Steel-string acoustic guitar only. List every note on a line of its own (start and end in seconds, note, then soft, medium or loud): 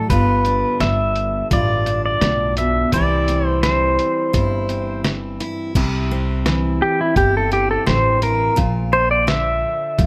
0.10 1.50 G2 medium
0.10 0.79 D3 medium
0.10 2.89 B3 medium
0.10 0.45 D4 medium
0.10 1.51 F4 medium
0.46 1.86 D4 medium
0.80 2.92 D3 medium
1.51 2.88 G2 medium
1.51 2.88 F4 medium
1.87 2.88 D4 medium
2.22 2.57 A2 medium
2.58 2.92 B2 medium
2.93 3.63 C3 medium
2.93 3.62 E3 medium
2.93 8.58 G3 medium
2.93 3.28 C4 medium
2.93 4.33 E4 medium
3.29 4.69 C4 medium
3.63 5.03 E3 medium
4.33 5.71 G2 medium
4.33 5.39 E4 medium
4.70 5.71 C4 medium
5.04 5.71 E3 medium
5.40 5.75 E4 medium
5.75 6.46 C3 medium
5.75 7.16 E4 medium
6.11 7.50 C4 medium
6.46 7.85 E3 medium
7.16 8.53 G2 medium
7.16 8.21 E4 medium
7.51 8.53 C4 medium
7.86 8.53 E3 medium
8.22 8.57 E4 medium
8.56 9.27 A#2 medium
8.56 9.98 F4 medium
8.93 10.06 D4 medium
9.27 10.06 D3 medium
9.99 10.06 F2 medium
9.99 10.06 F4 medium